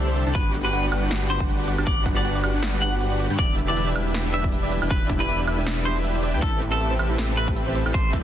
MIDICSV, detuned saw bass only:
0, 0, Header, 1, 2, 480
1, 0, Start_track
1, 0, Key_signature, 1, "minor"
1, 0, Tempo, 379747
1, 441, Time_signature, 4, 2, 24, 8
1, 10404, End_track
2, 0, Start_track
2, 0, Title_t, "Detuned saw bass"
2, 0, Program_c, 0, 39
2, 0, Note_on_c, 0, 36, 98
2, 308, Note_off_c, 0, 36, 0
2, 335, Note_on_c, 0, 36, 101
2, 420, Note_off_c, 0, 36, 0
2, 441, Note_on_c, 0, 31, 97
2, 900, Note_off_c, 0, 31, 0
2, 919, Note_on_c, 0, 31, 97
2, 1139, Note_off_c, 0, 31, 0
2, 1160, Note_on_c, 0, 31, 94
2, 2228, Note_off_c, 0, 31, 0
2, 2254, Note_on_c, 0, 31, 100
2, 2339, Note_off_c, 0, 31, 0
2, 2360, Note_on_c, 0, 31, 97
2, 2819, Note_off_c, 0, 31, 0
2, 2839, Note_on_c, 0, 31, 97
2, 3059, Note_off_c, 0, 31, 0
2, 3080, Note_on_c, 0, 31, 101
2, 4148, Note_off_c, 0, 31, 0
2, 4173, Note_on_c, 0, 43, 99
2, 4258, Note_off_c, 0, 43, 0
2, 4279, Note_on_c, 0, 28, 100
2, 4739, Note_off_c, 0, 28, 0
2, 4759, Note_on_c, 0, 28, 97
2, 4979, Note_off_c, 0, 28, 0
2, 5000, Note_on_c, 0, 28, 94
2, 6068, Note_off_c, 0, 28, 0
2, 6094, Note_on_c, 0, 28, 99
2, 6179, Note_off_c, 0, 28, 0
2, 6200, Note_on_c, 0, 28, 96
2, 6659, Note_off_c, 0, 28, 0
2, 6679, Note_on_c, 0, 28, 95
2, 6899, Note_off_c, 0, 28, 0
2, 6920, Note_on_c, 0, 28, 96
2, 8012, Note_on_c, 0, 40, 101
2, 8031, Note_off_c, 0, 28, 0
2, 8098, Note_off_c, 0, 40, 0
2, 8118, Note_on_c, 0, 33, 97
2, 8578, Note_off_c, 0, 33, 0
2, 8599, Note_on_c, 0, 33, 100
2, 8819, Note_off_c, 0, 33, 0
2, 8839, Note_on_c, 0, 33, 97
2, 9907, Note_off_c, 0, 33, 0
2, 9934, Note_on_c, 0, 33, 101
2, 10019, Note_off_c, 0, 33, 0
2, 10039, Note_on_c, 0, 33, 99
2, 10404, Note_off_c, 0, 33, 0
2, 10404, End_track
0, 0, End_of_file